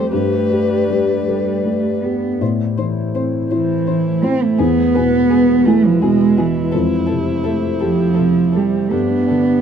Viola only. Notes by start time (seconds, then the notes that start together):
Already playing: A4
0.11 G4
3.51 E4
4.59 G#4
4.94 B4
5.30 G#4
5.66 E4
8.92 D4